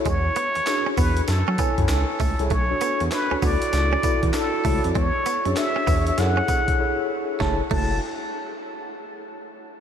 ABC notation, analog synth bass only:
X:1
M:4/4
L:1/16
Q:"Swing 16ths" 1/4=98
K:F#m
V:1 name="Analog synth bass" clef=bass
E,,2 z E,, z2 E,,2 F,, F, z F,, C,, z C,, ^B,,, | B,,,2 z E,, z D,, D,, z C,,2 z E,, z2 C,, ^E,, | E,, z2 F,, z2 E,,2 F,,2 z6 | F,,, z F,,,2 z12 |]